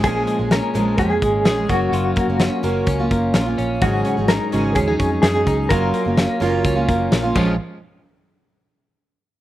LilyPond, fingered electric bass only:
\new Staff \with { instrumentName = "Fingered electric bass" } { \clef bass \time 4/4 \key bes \minor \tempo 4 = 127 bes,,8 r16 bes,,8 r16 bes,,8 f,8 aes,,8 bes,,8 ges,,8 | ges,,8 r16 ges,,8 r16 ges,,8 des,8 ges,,8 bes,,8 bes,,8 | aes,,8 r16 aes,,8 r16 aes,,8 ees,8 f,8 ges,8 des,8 | ges,,8 r16 ges,,8 r16 ges,,8 des,8 ges,,8 bes,,8 bes,,8 |
r1 | }